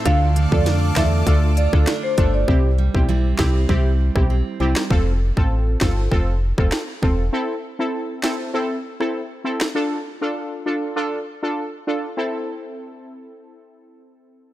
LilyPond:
<<
  \new Staff \with { instrumentName = "Analog synth pad" } { \time 4/4 \key a \minor \tempo 4 = 99 <a' d'' f'' d'''>1 | r1 | r1 | r1 |
r1 | r1 | }
  \new Staff \with { instrumentName = "Marimba" } { \time 4/4 \key a \minor f''16 r8 d''16 r8 e''16 r8. d''16 r8 c''16 r16 d''16 | r1 | r1 | r1 |
r1 | r1 | }
  \new Staff \with { instrumentName = "Synth stab" } { \time 4/4 \key a \minor <d' f' a'>16 r8 <d' f' a'>8. <d' f' a'>8 <d' f' a'>16 r8 <d' f' a'>16 r8 <d' f' a'>16 r16 | <c' e' g'>16 r8 <c' e' g'>8. <c' e' g'>8 <c' e' g'>16 r8 <c' e' g'>16 r8 <c' e' g'>16 r16 | <c' f' a'>16 r8 <c' f' a'>8. <c' f' a'>8 <c' f' a'>16 r8 <c' f' a'>16 r8 <c' f' a'>16 r16 | <c' e' a'>16 r8 <c' e' a'>8. <c' e' a'>8 <c' e' a'>16 r8 <c' e' a'>16 r8 <c' e' a'>16 r16 |
<d' f' a'>16 r8 <d' f' a'>8. <d' f' a'>8 <d' f' a'>16 r8 <d' f' a'>16 r8 <d' f' a'>16 r16 | <c' e' a'>1 | }
  \new Staff \with { instrumentName = "Steel-string acoustic guitar" } { \time 4/4 \key a \minor d8 a8 d'4. f'8 d'8 a8 | r8 g8 <g c' e'>8 c'8 g4 c'8 g8 | r1 | r1 |
r1 | r1 | }
  \new Staff \with { instrumentName = "FM bass" } { \clef bass \time 4/4 \key a \minor d,8. f,8. e,8 d,8. d,16 r8 g,,8 | c,8. b,,8. c,8 c,8. b,,8 r16 c,16 r16 | f,,8. a,,8. g,,8 f,,8. f,,16 r8 e,,8 | r1 |
r1 | r1 | }
  \new DrumStaff \with { instrumentName = "Drums" } \drummode { \time 4/4 <hh bd>8 hh16 bd16 <hh sn>8 <hc hh bd sn>8 <hh bd>8 hh16 <bd ss>16 <hc hh sn>8 <hh bd>8 | bd8. bd16 r8 <hc bd sn>8 bd8. <bd ss>16 r8. <hc sn>16 | bd8. bd16 r8 <hc bd sn>8 bd8. <bd ss>16 <hc sn>8 bd8 | r4 r8 <hc sn>8 r8. ss16 r8. <hc sn>16 |
r4 r4 r4 r4 | r4 r4 r4 r4 | }
>>